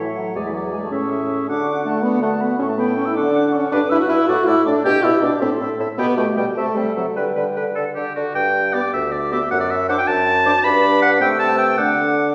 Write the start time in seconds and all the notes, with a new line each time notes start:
Already playing: A2 A4 E5
0.00 C#5
0.16 F#3 F#5
0.35 E2 G#3 G#4 D5 G#5
0.45 E3 E5
0.52 F#3 D5 F#5
0.71 G#3 G#5
0.82 A3 A5
0.90 A2 C#4 E5 C#6
1.11 E5
1.48 D3 D4 F#4 F#5 D6
1.69 F#5
1.85 A3 A5
2.02 D3 B3 B5
2.22 A3 F#5 A5
2.40 B3 B5
2.59 A2 C#4 A4 C#6
2.69 A3 A5
2.78 B3 G5 B5
2.96 C#4 C#6
3.05 E4 E6
3.14 D3 D4 F#5 D6
3.36 F#5
3.52 C#4 C#6
3.71 G2 D4 B4 D6
3.89 G2 E4 B4 E6
4.00 F#4 F#6
4.09 G2 E4 B4 E6
4.27 A2 F#4 A4 D5 F#6
4.46 A2 E4 D5 E6
4.65 A2 D4 D5 D6
4.84 B2 G4 D5 G6
5.03 B2 E4 D5 E6
5.22 B2 D4 D5 D6
5.40 A2 C4 A4 E5 C6
5.60 A2 E5
5.79 A2 E5
5.98 B2 B3 G4 G5 B5
6.17 B2 A3 G5 A5
6.36 B2 G3 G5
6.56 C3 A3 A4 E5 A5
6.75 C3 G3 E5 G5
6.96 C3 F#3 E5 F#5
7.15 D3 G3 B4 G5
7.36 D3 B4
7.56 D3 B4
7.76 D3 A4
7.95 D3 G4
8.16 D3 F#4
8.35 G2 G5
8.73 B3 G4 D5 D6
8.93 D2 E5
9.12 D5
9.31 B3 G4 E5 D6
9.51 F#2 F#5
9.60 D5
9.70 E5
9.89 D4 C5 F#5 D6
9.99 G5
10.08 F#2 A5
10.46 D4 C5 D6
10.64 G2 D4 B4 B5 D6
11.02 F#5
11.21 C3 A3 C5 G5 E6
11.39 A5
11.49 B4
11.58 G5
11.78 D3 D4 A4 F#5 D6